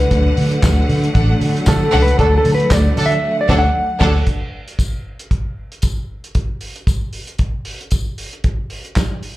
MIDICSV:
0, 0, Header, 1, 7, 480
1, 0, Start_track
1, 0, Tempo, 521286
1, 102, Time_signature, 4, 2, 24, 8
1, 8627, End_track
2, 0, Start_track
2, 0, Title_t, "Clean electric guitar"
2, 0, Program_c, 0, 27
2, 0, Note_on_c, 0, 71, 76
2, 955, Note_off_c, 0, 71, 0
2, 1548, Note_on_c, 0, 69, 80
2, 1859, Note_off_c, 0, 69, 0
2, 1863, Note_on_c, 0, 71, 84
2, 2021, Note_off_c, 0, 71, 0
2, 2025, Note_on_c, 0, 69, 86
2, 2178, Note_off_c, 0, 69, 0
2, 2189, Note_on_c, 0, 69, 85
2, 2341, Note_off_c, 0, 69, 0
2, 2345, Note_on_c, 0, 71, 96
2, 2504, Note_off_c, 0, 71, 0
2, 2504, Note_on_c, 0, 74, 101
2, 2811, Note_off_c, 0, 74, 0
2, 2815, Note_on_c, 0, 76, 100
2, 3111, Note_off_c, 0, 76, 0
2, 3138, Note_on_c, 0, 74, 93
2, 3298, Note_off_c, 0, 74, 0
2, 3301, Note_on_c, 0, 78, 90
2, 3743, Note_off_c, 0, 78, 0
2, 8627, End_track
3, 0, Start_track
3, 0, Title_t, "Violin section"
3, 0, Program_c, 1, 48
3, 1054, Note_on_c, 1, 62, 79
3, 1054, Note_on_c, 1, 69, 88
3, 1055, Note_on_c, 1, 78, 101
3, 1169, Note_off_c, 1, 62, 0
3, 1170, Note_off_c, 1, 69, 0
3, 1170, Note_off_c, 1, 78, 0
3, 1765, Note_on_c, 1, 78, 118
3, 1767, Note_on_c, 1, 62, 99
3, 1770, Note_on_c, 1, 69, 109
3, 1973, Note_off_c, 1, 78, 0
3, 1974, Note_off_c, 1, 62, 0
3, 1976, Note_off_c, 1, 69, 0
3, 3210, Note_on_c, 1, 62, 108
3, 3210, Note_on_c, 1, 78, 108
3, 3214, Note_on_c, 1, 69, 97
3, 3379, Note_off_c, 1, 62, 0
3, 3379, Note_off_c, 1, 78, 0
3, 3381, Note_off_c, 1, 69, 0
3, 3679, Note_on_c, 1, 78, 106
3, 3681, Note_on_c, 1, 62, 110
3, 3681, Note_on_c, 1, 69, 106
3, 3852, Note_off_c, 1, 78, 0
3, 3853, Note_off_c, 1, 69, 0
3, 3854, Note_off_c, 1, 62, 0
3, 8627, End_track
4, 0, Start_track
4, 0, Title_t, "Horn section"
4, 0, Program_c, 2, 61
4, 2007, Note_on_c, 2, 62, 95
4, 2010, Note_on_c, 2, 54, 97
4, 2010, Note_on_c, 2, 69, 98
4, 2095, Note_off_c, 2, 62, 0
4, 2097, Note_off_c, 2, 54, 0
4, 2097, Note_off_c, 2, 69, 0
4, 2729, Note_on_c, 2, 54, 86
4, 2730, Note_on_c, 2, 62, 102
4, 2732, Note_on_c, 2, 69, 105
4, 2883, Note_off_c, 2, 54, 0
4, 2883, Note_off_c, 2, 62, 0
4, 2885, Note_off_c, 2, 69, 0
4, 3210, Note_on_c, 2, 54, 99
4, 3210, Note_on_c, 2, 62, 89
4, 3210, Note_on_c, 2, 69, 99
4, 3336, Note_off_c, 2, 54, 0
4, 3336, Note_off_c, 2, 62, 0
4, 3336, Note_off_c, 2, 69, 0
4, 3687, Note_on_c, 2, 62, 102
4, 3688, Note_on_c, 2, 54, 100
4, 3688, Note_on_c, 2, 69, 108
4, 3815, Note_off_c, 2, 54, 0
4, 3815, Note_off_c, 2, 62, 0
4, 3815, Note_off_c, 2, 69, 0
4, 8627, End_track
5, 0, Start_track
5, 0, Title_t, "String section"
5, 0, Program_c, 3, 48
5, 0, Note_on_c, 3, 50, 84
5, 0, Note_on_c, 3, 78, 89
5, 101, Note_on_c, 3, 54, 76
5, 101, Note_on_c, 3, 57, 75
5, 3894, Note_off_c, 3, 54, 0
5, 3894, Note_off_c, 3, 57, 0
5, 3895, Note_off_c, 3, 50, 0
5, 3896, Note_off_c, 3, 78, 0
5, 8627, End_track
6, 0, Start_track
6, 0, Title_t, "Fingered electric bass"
6, 0, Program_c, 4, 33
6, 102, Note_on_c, 4, 38, 106
6, 269, Note_off_c, 4, 38, 0
6, 345, Note_on_c, 4, 50, 96
6, 511, Note_off_c, 4, 50, 0
6, 580, Note_on_c, 4, 38, 99
6, 747, Note_off_c, 4, 38, 0
6, 823, Note_on_c, 4, 50, 100
6, 989, Note_off_c, 4, 50, 0
6, 1059, Note_on_c, 4, 33, 101
6, 1226, Note_off_c, 4, 33, 0
6, 1298, Note_on_c, 4, 50, 100
6, 1465, Note_off_c, 4, 50, 0
6, 1540, Note_on_c, 4, 50, 101
6, 1706, Note_off_c, 4, 50, 0
6, 1781, Note_on_c, 4, 37, 94
6, 1946, Note_off_c, 4, 37, 0
6, 2017, Note_on_c, 4, 38, 103
6, 2184, Note_off_c, 4, 38, 0
6, 2261, Note_on_c, 4, 50, 98
6, 2426, Note_off_c, 4, 50, 0
6, 2493, Note_on_c, 4, 38, 104
6, 2661, Note_off_c, 4, 38, 0
6, 2738, Note_on_c, 4, 50, 96
6, 2904, Note_off_c, 4, 50, 0
6, 3213, Note_on_c, 4, 38, 104
6, 3381, Note_off_c, 4, 38, 0
6, 3691, Note_on_c, 4, 38, 101
6, 3859, Note_off_c, 4, 38, 0
6, 8627, End_track
7, 0, Start_track
7, 0, Title_t, "Drums"
7, 0, Note_on_c, 9, 42, 47
7, 91, Note_off_c, 9, 42, 0
7, 101, Note_on_c, 9, 42, 74
7, 103, Note_on_c, 9, 36, 106
7, 193, Note_off_c, 9, 42, 0
7, 195, Note_off_c, 9, 36, 0
7, 341, Note_on_c, 9, 46, 78
7, 433, Note_off_c, 9, 46, 0
7, 473, Note_on_c, 9, 42, 45
7, 565, Note_off_c, 9, 42, 0
7, 580, Note_on_c, 9, 36, 117
7, 582, Note_on_c, 9, 39, 94
7, 583, Note_on_c, 9, 42, 67
7, 585, Note_on_c, 9, 54, 92
7, 589, Note_on_c, 9, 38, 122
7, 672, Note_off_c, 9, 36, 0
7, 674, Note_off_c, 9, 39, 0
7, 675, Note_off_c, 9, 42, 0
7, 678, Note_off_c, 9, 54, 0
7, 681, Note_off_c, 9, 38, 0
7, 823, Note_on_c, 9, 46, 71
7, 915, Note_off_c, 9, 46, 0
7, 954, Note_on_c, 9, 42, 46
7, 1046, Note_off_c, 9, 42, 0
7, 1059, Note_on_c, 9, 36, 109
7, 1060, Note_on_c, 9, 42, 70
7, 1151, Note_off_c, 9, 36, 0
7, 1152, Note_off_c, 9, 42, 0
7, 1301, Note_on_c, 9, 46, 65
7, 1393, Note_off_c, 9, 46, 0
7, 1440, Note_on_c, 9, 42, 43
7, 1528, Note_on_c, 9, 54, 95
7, 1530, Note_off_c, 9, 42, 0
7, 1530, Note_on_c, 9, 42, 75
7, 1538, Note_on_c, 9, 36, 103
7, 1540, Note_on_c, 9, 39, 81
7, 1548, Note_on_c, 9, 38, 107
7, 1620, Note_off_c, 9, 54, 0
7, 1622, Note_off_c, 9, 42, 0
7, 1630, Note_off_c, 9, 36, 0
7, 1632, Note_off_c, 9, 39, 0
7, 1640, Note_off_c, 9, 38, 0
7, 1779, Note_on_c, 9, 46, 77
7, 1871, Note_off_c, 9, 46, 0
7, 1913, Note_on_c, 9, 42, 47
7, 2005, Note_off_c, 9, 42, 0
7, 2016, Note_on_c, 9, 36, 97
7, 2016, Note_on_c, 9, 42, 74
7, 2108, Note_off_c, 9, 36, 0
7, 2108, Note_off_c, 9, 42, 0
7, 2254, Note_on_c, 9, 46, 66
7, 2346, Note_off_c, 9, 46, 0
7, 2393, Note_on_c, 9, 42, 50
7, 2485, Note_off_c, 9, 42, 0
7, 2493, Note_on_c, 9, 36, 116
7, 2495, Note_on_c, 9, 39, 98
7, 2495, Note_on_c, 9, 54, 89
7, 2496, Note_on_c, 9, 42, 64
7, 2503, Note_on_c, 9, 38, 127
7, 2585, Note_off_c, 9, 36, 0
7, 2587, Note_off_c, 9, 39, 0
7, 2587, Note_off_c, 9, 54, 0
7, 2588, Note_off_c, 9, 42, 0
7, 2595, Note_off_c, 9, 38, 0
7, 2735, Note_on_c, 9, 46, 62
7, 2827, Note_off_c, 9, 46, 0
7, 2872, Note_on_c, 9, 42, 45
7, 2964, Note_off_c, 9, 42, 0
7, 3213, Note_on_c, 9, 36, 95
7, 3215, Note_on_c, 9, 49, 71
7, 3222, Note_on_c, 9, 38, 97
7, 3305, Note_off_c, 9, 36, 0
7, 3307, Note_off_c, 9, 49, 0
7, 3314, Note_off_c, 9, 38, 0
7, 3691, Note_on_c, 9, 49, 83
7, 3692, Note_on_c, 9, 36, 124
7, 3698, Note_on_c, 9, 38, 107
7, 3783, Note_off_c, 9, 49, 0
7, 3784, Note_off_c, 9, 36, 0
7, 3790, Note_off_c, 9, 38, 0
7, 3929, Note_on_c, 9, 42, 67
7, 3931, Note_on_c, 9, 36, 83
7, 4021, Note_off_c, 9, 42, 0
7, 4023, Note_off_c, 9, 36, 0
7, 4306, Note_on_c, 9, 42, 42
7, 4398, Note_off_c, 9, 42, 0
7, 4409, Note_on_c, 9, 36, 93
7, 4411, Note_on_c, 9, 42, 51
7, 4417, Note_on_c, 9, 54, 74
7, 4501, Note_off_c, 9, 36, 0
7, 4503, Note_off_c, 9, 42, 0
7, 4509, Note_off_c, 9, 54, 0
7, 4783, Note_on_c, 9, 42, 45
7, 4875, Note_off_c, 9, 42, 0
7, 4889, Note_on_c, 9, 36, 90
7, 4891, Note_on_c, 9, 42, 62
7, 4981, Note_off_c, 9, 36, 0
7, 4983, Note_off_c, 9, 42, 0
7, 5265, Note_on_c, 9, 42, 39
7, 5357, Note_off_c, 9, 42, 0
7, 5359, Note_on_c, 9, 42, 57
7, 5363, Note_on_c, 9, 54, 90
7, 5369, Note_on_c, 9, 36, 91
7, 5452, Note_off_c, 9, 42, 0
7, 5456, Note_off_c, 9, 54, 0
7, 5461, Note_off_c, 9, 36, 0
7, 5746, Note_on_c, 9, 42, 43
7, 5838, Note_off_c, 9, 42, 0
7, 5845, Note_on_c, 9, 42, 64
7, 5848, Note_on_c, 9, 36, 88
7, 5937, Note_off_c, 9, 42, 0
7, 5940, Note_off_c, 9, 36, 0
7, 6083, Note_on_c, 9, 46, 65
7, 6175, Note_off_c, 9, 46, 0
7, 6222, Note_on_c, 9, 42, 45
7, 6314, Note_off_c, 9, 42, 0
7, 6327, Note_on_c, 9, 36, 109
7, 6328, Note_on_c, 9, 42, 59
7, 6337, Note_on_c, 9, 54, 79
7, 6419, Note_off_c, 9, 36, 0
7, 6420, Note_off_c, 9, 42, 0
7, 6429, Note_off_c, 9, 54, 0
7, 6562, Note_on_c, 9, 46, 58
7, 6654, Note_off_c, 9, 46, 0
7, 6697, Note_on_c, 9, 42, 43
7, 6789, Note_off_c, 9, 42, 0
7, 6800, Note_on_c, 9, 42, 60
7, 6807, Note_on_c, 9, 36, 91
7, 6892, Note_off_c, 9, 42, 0
7, 6899, Note_off_c, 9, 36, 0
7, 7044, Note_on_c, 9, 46, 72
7, 7136, Note_off_c, 9, 46, 0
7, 7188, Note_on_c, 9, 42, 40
7, 7280, Note_off_c, 9, 42, 0
7, 7280, Note_on_c, 9, 42, 59
7, 7288, Note_on_c, 9, 54, 96
7, 7292, Note_on_c, 9, 36, 87
7, 7372, Note_off_c, 9, 42, 0
7, 7380, Note_off_c, 9, 54, 0
7, 7384, Note_off_c, 9, 36, 0
7, 7531, Note_on_c, 9, 46, 68
7, 7623, Note_off_c, 9, 46, 0
7, 7670, Note_on_c, 9, 42, 41
7, 7762, Note_off_c, 9, 42, 0
7, 7770, Note_on_c, 9, 42, 60
7, 7774, Note_on_c, 9, 36, 91
7, 7862, Note_off_c, 9, 42, 0
7, 7866, Note_off_c, 9, 36, 0
7, 8011, Note_on_c, 9, 46, 71
7, 8103, Note_off_c, 9, 46, 0
7, 8147, Note_on_c, 9, 42, 44
7, 8239, Note_off_c, 9, 42, 0
7, 8252, Note_on_c, 9, 39, 81
7, 8253, Note_on_c, 9, 42, 57
7, 8255, Note_on_c, 9, 36, 107
7, 8259, Note_on_c, 9, 38, 105
7, 8264, Note_on_c, 9, 54, 81
7, 8344, Note_off_c, 9, 39, 0
7, 8345, Note_off_c, 9, 42, 0
7, 8347, Note_off_c, 9, 36, 0
7, 8352, Note_off_c, 9, 38, 0
7, 8356, Note_off_c, 9, 54, 0
7, 8495, Note_on_c, 9, 46, 57
7, 8587, Note_off_c, 9, 46, 0
7, 8627, End_track
0, 0, End_of_file